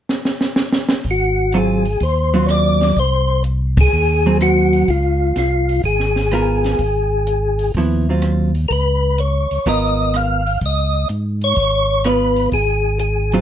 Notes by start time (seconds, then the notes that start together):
0.09 snare
0.25 snare
0.41 snare
0.56 snare
0.72 snare
0.89 snare
1.04 G#1, kick, open hi-hat
1.11 F#4
1.52 F#3 C4 F4, closed hi-hat
1.56 G#4
1.85 open hi-hat
2.00 D#2 C5, kick, open hi-hat
2.34 F#3 C4 F4
2.46 C#5 D5, cross-stick, closed hi-hat
2.81 snare, open hi-hat
2.96 C2 C5, kick, open hi-hat
3.44 closed hi-hat
3.77 G#4, kick, ride
3.93 D#2
4.26 F#3 C4
4.41 F#4, cross-stick, closed hi-hat
4.73 open hi-hat
4.88 C#2 F4, kick, open hi-hat
5.36 C2 F4, snare, closed hi-hat
5.69 open hi-hat
5.84 G#1 G#4, kick, open hi-hat
6.00 snare
6.16 snare
6.31 B3 F4 A#4, cross-stick, closed hi-hat
6.64 snare, open hi-hat
6.79 G#1, kick, open hi-hat
7.27 closed hi-hat
7.59 open hi-hat
7.74 D#2 F3 B3 E4, kick, open hi-hat
8.09 F#3 C4 F4
8.22 cross-stick, closed hi-hat
8.55 open hi-hat
8.68 C#2 A#4, kick, open hi-hat
8.72 B4
9.18 C#5, closed hi-hat
9.51 C#2, open hi-hat
9.66 G#1 B3 F4 A#4 D#5, kick, open hi-hat
10.14 F5, cross-stick, closed hi-hat
10.46 open hi-hat
10.61 C#2, kick, open hi-hat
10.66 D#5
11.09 G#2, closed hi-hat
11.41 C#5, open hi-hat
11.56 G#1, kick, open hi-hat
12.04 B3 F4 B4, cross-stick, closed hi-hat
12.36 open hi-hat
12.52 G#1 G#4, kick, open hi-hat
12.99 G#4, closed hi-hat
13.32 F#3 C4 F4, open hi-hat